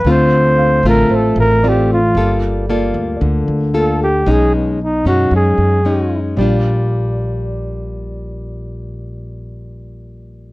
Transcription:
<<
  \new Staff \with { instrumentName = "Grand piano" } { \time 4/4 \key bes \major \tempo 4 = 114 <f'' g''>8 r8 f''4 c''4 d''4~ | d''8 r8 d''2. | r1 | d''1~ |
d''1 | }
  \new Staff \with { instrumentName = "Flugelhorn" } { \time 4/4 \key bes \major c''4. bes'8 a'8 bes'8 g'8 f'8~ | f'8 r2 r8 a'8 g'8 | gis'8 b8 dis'8 fis'8 gis'4.~ gis'16 r16 | r1 |
r1 | }
  \new Staff \with { instrumentName = "Nylon-string guitar" } { \time 4/4 \key bes \major << { <a c' f'>4. <a c' f'>4. <a c' f'>8 r8 | <bes f' a'>4 <bes f' a'>2 <bes f' a'>8 r8 | <gis cis' dis'>4 r8 <gis cis' dis'>4. <gis cis' dis'>4 | <bes, g d' f'>1~ |
<bes, g d' f'>1 | } \\ { d2 a,2 | g2 d2 | b,2 fis2 | r1 |
r1 | } >> }
  \new Staff \with { instrumentName = "Upright bass" } { \clef bass \time 4/4 \key bes \major d,4. a,,8 a,,8 a,,4. | g,,4. d,8 d,8 d,4. | b,,4. fis,8 fis,8 fis,4. | bes,,1~ |
bes,,1 | }
>>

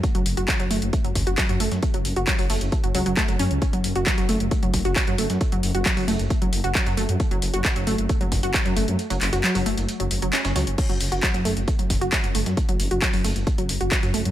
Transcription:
<<
  \new Staff \with { instrumentName = "Synth arpeggio sound" } { \clef bass \time 4/4 \key fis \minor \tempo 4 = 134 r16 fis16 r16 fis'16 fis16 fis16 a16 r8 fis16 r16 fis'16 fis16 fis16 a16 r16 | r16 fis16 r16 fis'16 fis16 fis16 a16 r8 fis16 fis16 fis16 a16 fis16 cis'16 r16 | r16 fis16 r16 fis'16 fis16 fis16 a16 r8 fis16 r16 fis'16 fis16 fis16 a16 r16 | r16 fis16 r16 fis'16 fis16 fis16 a16 r8 fis16 r16 fis'16 fis16 fis16 a16 r16 |
r16 fis16 r16 fis'16 fis16 fis16 a16 r8 fis16 r16 fis'16 fis16 fis16 a16 r16 | r16 fis16 r16 fis'16 fis16 fis16 a16 r8 fis16 r16 fis16 cis'16 cis'16 fis16 r16 | r16 fis16 r16 fis'16 fis16 fis16 a16 r8 fis16 r16 fis'16 fis16 fis16 a16 r16 | r16 fis16 r16 fis'16 fis16 fis16 a16 r8 fis16 r16 fis'16 fis16 fis16 a16 r16 | }
  \new Staff \with { instrumentName = "Detuned saw bass" } { \clef bass \time 4/4 \key fis \minor r16 fis,,16 fis,,16 fis,,16 r16 fis,,16 fis,,16 fis,,16 r16 fis,,16 fis,,16 fis,,16 r16 fis,16 fis,,16 fis,16 | r16 fis,,16 fis,,16 fis,,16 r16 fis,,16 fis,,16 fis,,16 r16 fis,,16 cis,16 fis,,16 r16 fis,,16 fis,16 cis,16 | r16 fis,,16 fis,,16 fis,,16 r16 fis,,16 fis,,16 fis,,16 r16 fis,,16 fis,,16 fis,,16 r16 fis,16 fis,,16 fis,16 | r16 fis,,16 fis,,16 fis,,16 r16 fis,,16 fis,,16 fis,,16 r16 fis,,16 fis,,16 fis,,16 r16 fis,16 fis,,16 fis,16 |
r16 fis,,16 fis,,16 fis,,16 r16 fis,,16 fis,,16 fis,,16 r16 fis,,16 fis,,16 fis,,16 r16 fis,16 fis,,16 fis,16 | r16 fis,,16 fis,,16 fis,,16 r16 fis,,16 fis,,16 fis,,16 r16 fis,,16 fis,,16 fis,,16 r16 fis,,16 cis,16 fis,,16 | r16 fis,,16 fis,,16 fis,,16 r16 fis,,16 fis,,16 fis,,16 r16 fis,,16 fis,,16 fis,,16 r16 fis,16 fis,,16 fis,16 | r16 fis,,16 fis,,16 fis,,16 r16 fis,,16 fis,,16 fis,,16 r16 fis,,16 fis,,16 fis,,16 r16 fis,16 fis,,16 fis,16 | }
  \new DrumStaff \with { instrumentName = "Drums" } \drummode { \time 4/4 <hh bd>16 hh16 <hh hho>16 hh16 <hc hh bd sn>16 hh16 <hh hho>16 hh16 <hh bd>16 hh16 <hh hho bd sn>16 hh16 <hc hh hho bd sn>16 hh16 <hh hho>16 <hh sn>16 | <hh bd>16 hh16 <hh hho>16 hh16 <hc hh bd sn>16 <hh hho>16 hho16 hh16 <hh bd>16 hh16 <hh hho>16 hh16 <hc hh bd sn>16 hh16 <hh hho>16 hh16 | <hh bd>16 hh16 <hh hho>16 hh16 <hc hh bd sn>16 hh16 <hh hho>16 hh16 <hh bd>16 hh16 <hh hho bd sn>16 hh16 <hc hh hho bd sn>16 hh16 <hh hho>16 <hh sn>16 | <hh bd>16 hh16 <hh hho>16 hh16 <hc hh bd sn>16 <hh hho>16 hho16 hh16 <hh bd>16 hh16 <hh hho>16 hh16 <hc hh bd sn>16 hh16 <hh hho>16 hh16 |
<hh bd>16 hh16 <hh hho>16 hh16 <hc hh bd sn>16 hh16 <hh hho>16 hh16 <hh bd>16 hh16 <hh hho bd sn>16 hh16 <hc hh hho bd sn>16 hh16 <hh hho>16 hh16 | hh16 hh16 <hc hho>16 hh16 <hc hh>16 <hh hho>16 hho16 hh16 hh16 hh16 <hh hho>16 hh16 <hc hh sn>16 <hh sn>16 <hh hho sn>16 hh16 | <cymc hh bd>16 hh16 <hh hho>16 hh16 <hc hh bd sn>16 hh16 <hh hho>16 hh16 <hh bd>16 hh16 <hh hho bd sn>16 hh16 <hc hh hho bd sn>16 hh16 <hh hho>16 <hh sn>16 | <hh bd>16 hh16 <hh hho>16 hh16 <hc hh bd sn>16 <hh hho>16 hho16 hh16 <hh bd>16 hh16 <hh hho>16 hh16 <hc hh bd sn>16 hh16 <hh hho>16 hh16 | }
>>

